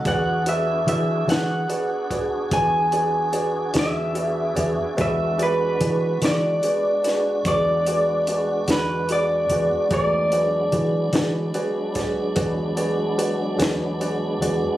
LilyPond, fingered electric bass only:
\new Staff \with { instrumentName = "Fingered electric bass" } { \clef bass \time 12/8 \key e \major \tempo 4. = 49 e,4 e8 e8 r4 e,4. e,4 e,16 r16 | e,4 e8 e8 r4 e,4. e,4 e,16 r16 | e,4 e8 e8 r4 e,4. e,4 e,16 r16 | }